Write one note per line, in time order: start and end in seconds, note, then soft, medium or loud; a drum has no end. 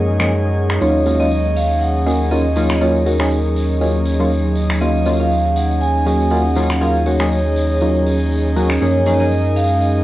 0.00 0.79 F#2 medium
0.00 0.17 F3 medium
0.00 0.77 G#3 medium
0.00 0.17 A#3 medium
0.00 0.17 C#4 medium
0.00 0.17 D#4 medium
0.00 0.77 D#4 medium
0.00 0.80 D#4 medium
0.00 0.17 G#4 medium
0.00 0.81 G#4 medium
0.00 0.77 A#4 medium
0.00 8.81 C#5 medium
0.00 0.27 D#5 medium
0.00 8.81 D#5 medium
0.00 0.77 F#5 medium
0.20 0.31 F3 medium
0.20 0.31 A#3 medium
0.20 0.31 C#4 medium
0.20 0.31 D#4 medium
0.20 0.31 G#4 medium
0.20 finger snap medium
0.70 finger snap medium
0.81 8.79 D#2 medium
0.81 1.03 F#3 medium
0.81 8.77 F#3 medium
0.81 1.04 A#3 medium
0.81 10.04 C#4 medium
0.81 1.04 C#4 medium
0.81 10.04 D#4 medium
0.81 1.04 D#4 medium
0.81 1.04 F4 medium
0.81 1.21 C#5 loud
0.81 8.77 C#5 medium
0.81 tambourine soft
0.96 tambourine soft
1.06 1.18 F#3 medium
1.06 1.18 A#3 medium
1.06 1.18 C#4 medium
1.06 1.18 D#4 medium
1.06 1.18 F4 medium
1.06 tambourine medium
1.20 1.31 F#3 medium
1.20 1.31 A#3 medium
1.20 1.31 C#4 medium
1.20 1.31 D#4 medium
1.20 1.31 F4 medium
1.20 1.57 D#5 loud
1.20 tambourine soft
1.31 tambourine medium
1.44 10.04 G#4 medium
1.44 tambourine soft
1.56 1.82 F5 loud
1.56 tambourine medium
1.70 tambourine soft
1.81 2.33 F#5 loud
1.81 tambourine soft
1.95 tambourine soft
2.06 2.28 F#3 medium
2.06 2.28 A#3 medium
2.06 2.28 C#4 medium
2.06 2.28 D#4 medium
2.06 2.29 G#4 loud
2.06 tambourine medium
2.20 tambourine soft
2.31 2.44 F#3 medium
2.31 2.44 A#3 medium
2.31 2.44 C#4 medium
2.31 2.44 D#4 medium
2.31 2.44 F4 medium
2.31 2.74 D#5 loud
2.31 tambourine medium
2.45 tambourine soft
2.56 2.76 F#3 loud
2.56 2.76 A#3 medium
2.56 2.76 C#4 medium
2.56 2.76 D#4 medium
2.56 2.76 F4 loud
2.56 tambourine medium
2.70 finger snap medium
2.70 tambourine soft
2.75 2.81 D#5 medium
2.81 3.03 F#3 medium
2.81 3.03 A#3 medium
2.81 3.04 C#4 medium
2.81 3.03 D#4 medium
2.81 3.04 F4 loud
2.81 3.07 C#5 loud
2.81 tambourine medium
2.95 tambourine soft
3.06 3.17 F#3 medium
3.06 3.17 A#3 medium
3.06 3.17 C#4 medium
3.06 3.17 D#4 medium
3.06 3.17 F#4 medium
3.06 4.02 A#4 medium
3.06 tambourine loud
3.20 3.39 F#3 medium
3.20 3.39 A#3 medium
3.20 3.39 C#4 medium
3.20 3.39 D#4 medium
3.20 3.39 G#4 loud
3.20 finger snap medium
3.20 tambourine soft
3.31 tambourine medium
3.45 tambourine soft
3.56 tambourine medium
3.70 tambourine soft
3.81 4.17 F#3 medium
3.81 4.17 A#3 medium
3.81 4.17 C#4 medium
3.81 4.17 D#4 medium
3.81 4.17 F4 medium
3.81 tambourine soft
3.95 tambourine soft
4.06 tambourine medium
4.20 4.31 F#3 medium
4.20 4.31 A#3 medium
4.20 4.31 C#4 medium
4.20 4.31 D#4 medium
4.20 4.31 F4 medium
4.20 tambourine soft
4.31 tambourine soft
4.45 tambourine soft
4.55 tambourine medium
4.70 finger snap medium
4.70 tambourine soft
4.81 5.03 F#3 medium
4.81 5.03 A#3 medium
4.81 5.03 C#4 medium
4.81 5.03 D#4 medium
4.81 5.03 F4 medium
4.81 5.21 D#5 loud
4.81 tambourine medium
4.96 tambourine soft
5.06 5.18 F#3 medium
5.06 5.18 A#3 medium
5.06 5.18 C#4 medium
5.06 5.18 D#4 medium
5.06 5.18 F4 loud
5.06 tambourine medium
5.20 5.31 F#3 medium
5.20 5.31 A#3 medium
5.20 5.31 C#4 medium
5.20 5.31 D#4 medium
5.20 5.31 F4 medium
5.20 5.57 F5 medium
5.20 tambourine soft
5.31 tambourine medium
5.46 tambourine soft
5.56 5.82 F#5 loud
5.56 tambourine medium
5.69 tambourine soft
5.81 6.33 G#5 loud
5.81 tambourine medium
5.96 tambourine soft
6.06 6.28 F#3 medium
6.06 6.28 A#3 medium
6.06 6.28 C#4 medium
6.06 6.29 D#4 medium
6.06 6.29 G#4 loud
6.06 tambourine medium
6.20 tambourine soft
6.30 6.44 F#3 medium
6.30 6.44 A#3 medium
6.30 6.44 C#4 medium
6.30 6.44 D#4 medium
6.30 6.44 F4 medium
6.30 6.83 F#5 loud
6.30 tambourine soft
6.45 tambourine soft
6.55 6.76 F#3 loud
6.55 6.76 A#3 medium
6.55 6.76 C#4 medium
6.55 6.76 D#4 medium
6.55 6.76 F4 loud
6.55 tambourine medium
6.70 finger snap medium
6.70 tambourine soft
6.81 7.03 F#3 medium
6.81 7.03 A#3 medium
6.81 7.03 C#4 medium
6.81 7.04 D#4 medium
6.81 7.04 F4 loud
6.81 6.92 F5 loud
6.81 tambourine medium
6.95 tambourine soft
7.06 7.17 F#3 medium
7.06 7.17 A#3 medium
7.06 7.17 C#4 medium
7.06 7.17 D#4 medium
7.06 7.17 F#4 medium
7.06 8.02 C#5 medium
7.06 tambourine medium
7.20 7.39 F#3 loud
7.20 7.39 A#3 medium
7.20 7.39 C#4 medium
7.20 7.39 D#4 medium
7.20 7.39 G#4 loud
7.20 finger snap medium
7.20 tambourine soft
7.32 tambourine medium
7.45 tambourine soft
7.56 tambourine medium
7.70 tambourine soft
7.81 8.17 F#3 medium
7.81 8.17 A#3 medium
7.81 8.17 C#4 medium
7.81 8.17 D#4 medium
7.81 8.17 F4 medium
7.81 tambourine medium
7.95 tambourine soft
8.06 tambourine medium
8.20 tambourine soft
8.31 tambourine soft
8.45 tambourine soft
8.56 8.69 F#3 medium
8.56 8.69 A#3 medium
8.56 8.69 C#4 medium
8.56 8.69 D#4 medium
8.56 8.70 F#4 medium
8.56 tambourine medium
8.70 finger snap medium
8.70 tambourine soft
8.81 10.04 F#2 medium
8.81 9.03 F3 medium
8.81 10.04 G#3 medium
8.81 9.03 A#3 medium
8.81 9.04 C#4 medium
8.81 9.04 D#4 medium
8.81 10.04 D#4 medium
8.81 9.04 G#4 medium
8.81 10.04 A#4 medium
8.81 9.21 C#5 loud
8.81 tambourine medium
8.95 tambourine soft
9.06 9.18 F3 medium
9.06 9.18 A#3 medium
9.06 9.18 C#4 medium
9.06 9.18 D#4 medium
9.06 9.18 G#4 loud
9.06 10.04 G#5 medium
9.06 tambourine medium
9.20 9.31 F3 medium
9.20 9.31 A#3 medium
9.20 9.31 C#4 medium
9.20 9.31 D#4 medium
9.20 9.31 G#4 medium
9.20 9.57 D#5 loud
9.20 tambourine soft
9.32 tambourine soft
9.45 tambourine soft
9.56 9.82 F5 loud
9.56 tambourine loud
9.70 tambourine soft
9.75 10.04 C#5 medium
9.81 10.04 D#5 medium
9.81 tambourine medium
9.95 tambourine soft